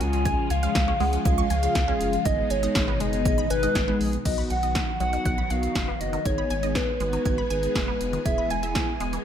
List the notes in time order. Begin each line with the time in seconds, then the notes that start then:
Already playing: C#3
0.00 C#2 F3 G#3 C#4 F4 G#4 G#5, closed hi-hat
0.13 closed hi-hat
0.25 G#6, kick, closed hi-hat
0.50 C#2 F5 G#5, closed hi-hat
0.63 G#3 C#4 F4 G#4 F5, closed hi-hat
0.75 C#2, kick, snare, closed hi-hat
0.88 C#4
1.00 C#2 G#3 C#4 F4 G#4 F#5, open hi-hat
1.13 closed hi-hat
1.25 C#2 F5 G#6, kick, closed hi-hat
1.38 C#6
1.50 C#2 G#5, closed hi-hat
1.63 G#3 C#4 F4 G#4 F5, closed hi-hat
1.75 C#2 G#4, kick, snare, closed hi-hat
1.88 G#3 C#4 F4 G#4
2.00 F#1, closed hi-hat
2.13 closed hi-hat
2.25 G#1 B2 D#3 G#3 B3 D#4 G#4 D#5 G#6, kick, closed hi-hat
2.50 G#1 C#5 G#5, closed hi-hat
2.63 G#3 B3 D#4 G#4 D#5, closed hi-hat
2.75 G#1, kick, snare, closed hi-hat
2.88 B3
3.00 F#1 G#3 B3 D#4 G#4 D#5, closed hi-hat
3.13 closed hi-hat
3.25 G#1 G#6, kick, closed hi-hat
3.38 B5
3.50 G#1 B4 G#5, closed hi-hat
3.63 G#3 B3 D#4 G#4 D#5, closed hi-hat
3.75 G#1 G#4, kick, snare, closed hi-hat
3.88 G#3 B3 D#4 G#4
4.00 A#1, open hi-hat
4.13 closed hi-hat
4.25 B1 D#3 F#3 B3 D#4 F#4 D#5 F#6, kick, closed hi-hat, crash
4.38 B5
4.50 B1 F#5, closed hi-hat
4.63 B3 D#4 F#4 D#5, closed hi-hat
4.75 F#4, kick, snare, closed hi-hat
5.00 B1 F#3 B3 D#4 F#4 F#5, closed hi-hat
5.13 D#3, closed hi-hat
5.25 B1 F#6, kick, closed hi-hat
5.38 B5
5.50 B1 B3 D#4 F#4 F5 F#5, closed hi-hat
5.63 closed hi-hat
5.75 F#1 F#4, kick, snare, closed hi-hat
5.88 B3
6.00 F#1 B3 D#4 F#4 D#5, closed hi-hat
6.13 D#3, closed hi-hat
6.25 G#1 G#3 B3 D#4 G#4 C#5 G#6, kick, closed hi-hat
6.38 B5
6.50 G#1 G#5, closed hi-hat
6.63 B3 D#4 G#4 D#5, closed hi-hat
6.75 G#4 B4, kick, snare, closed hi-hat
7.00 G#1 G#3 B3 D#4 F#4, closed hi-hat
7.13 D#3, closed hi-hat
7.25 G#1 G#6, kick, closed hi-hat
7.38 B5
7.50 G#1 B3 D#4 G#4 B4 G#5, closed hi-hat
7.63 closed hi-hat
7.75 F1 G#4, kick, snare, closed hi-hat
7.88 B3
8.01 F1 B3 D#4 F4, closed hi-hat
8.13 D#3, closed hi-hat
8.25 E1 E3 B3 E4 G#4 E5 G#6, kick, closed hi-hat
8.38 B5
8.50 E1 G#5, closed hi-hat
8.63 B3 E4 G#4 E5, closed hi-hat
8.75 G#4, kick, snare, closed hi-hat
9.00 E1 G#3 B3 E4 G#4 G#5, closed hi-hat
9.13 E3, closed hi-hat